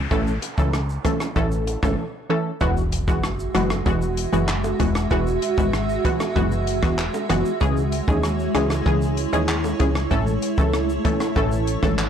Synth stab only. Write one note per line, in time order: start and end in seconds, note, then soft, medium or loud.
0.11 0.32 E3 medium
0.11 0.33 A3 medium
0.11 0.33 C#4 medium
0.11 0.33 A4 loud
0.58 0.79 E3 medium
0.58 0.79 A3 medium
0.58 0.80 C#4 medium
0.58 0.80 A4 medium
1.05 1.26 E3 medium
1.05 1.26 A3 medium
1.05 1.26 C#4 medium
1.05 1.27 A4 medium
1.36 1.79 E3 loud
1.36 1.79 A3 medium
1.36 1.79 C#4 medium
1.36 1.79 A4 loud
1.83 2.04 E3 medium
1.83 2.04 A3 medium
1.83 2.05 C#4 medium
1.83 2.05 A4 medium
2.30 2.51 E3 medium
2.30 2.51 A3 medium
2.30 2.51 C#4 medium
2.30 2.52 A4 medium
2.61 2.82 E3 loud
2.61 2.83 G#3 medium
2.61 2.83 B3 medium
2.61 2.83 F#4 loud
3.08 3.29 E3 medium
3.08 3.29 G#3 medium
3.08 3.30 B3 medium
3.08 3.30 F#4 medium
3.55 3.76 E3 medium
3.55 3.76 G#3 medium
3.55 3.76 B3 medium
3.55 3.76 F#4 medium
3.86 4.29 E3 medium
3.86 4.29 G#3 medium
3.86 4.29 B3 medium
3.86 4.29 F#4 loud
4.33 4.54 E3 medium
4.33 4.54 G#3 medium
4.33 4.54 B3 medium
4.33 4.55 F#4 medium
4.80 5.01 E3 medium
4.80 5.01 G#3 medium
4.80 5.01 B3 medium
4.80 5.01 F#4 medium
5.11 5.32 E3 loud
5.11 5.33 G#3 medium
5.11 5.33 B3 medium
5.11 5.33 F#4 loud
5.58 5.79 E3 medium
5.58 5.79 G#3 medium
5.58 5.79 B3 medium
5.58 5.80 F#4 medium
6.04 6.26 E3 medium
6.04 6.26 G#3 medium
6.04 6.26 B3 medium
6.04 6.26 F#4 medium
6.36 6.79 E3 medium
6.36 6.79 G#3 medium
6.36 6.79 B3 medium
6.36 6.79 F#4 loud
6.83 7.04 E3 medium
6.83 7.04 G#3 medium
6.83 7.04 B3 medium
6.83 7.05 F#4 medium
7.29 7.51 E3 medium
7.29 7.51 G#3 medium
7.29 7.51 B3 medium
7.29 7.51 F#4 medium
7.61 7.82 E3 medium
7.61 7.83 G#3 medium
7.61 7.83 C#4 medium
7.61 7.83 G#4 loud
8.08 8.29 E3 medium
8.08 8.29 G#3 medium
8.08 8.30 C#4 medium
8.08 8.30 G#4 medium
8.55 8.76 E3 medium
8.55 8.76 G#3 medium
8.55 8.76 C#4 medium
8.55 8.76 G#4 medium
8.86 9.29 E3 loud
8.86 9.29 G#3 medium
8.86 9.29 C#4 medium
8.86 9.29 G#4 loud
9.33 9.54 E3 medium
9.33 9.54 G#3 medium
9.33 9.55 C#4 medium
9.33 9.55 G#4 medium
9.80 10.01 E3 medium
9.80 10.01 G#3 medium
9.80 10.01 C#4 medium
9.80 10.01 G#4 medium
10.11 10.32 E3 medium
10.11 10.33 A3 medium
10.11 10.33 C#4 medium
10.11 10.33 A4 loud
10.58 10.79 E3 medium
10.58 10.79 A3 medium
10.58 10.80 C#4 medium
10.58 10.80 A4 medium
11.05 11.26 E3 medium
11.05 11.26 A3 medium
11.05 11.26 C#4 medium
11.05 11.27 A4 medium
11.36 11.79 E3 medium
11.36 11.79 A3 medium
11.36 11.79 C#4 medium
11.36 11.79 A4 loud
11.83 12.04 E3 medium
11.83 12.04 A3 medium
11.83 12.05 C#4 medium
11.83 12.05 A4 medium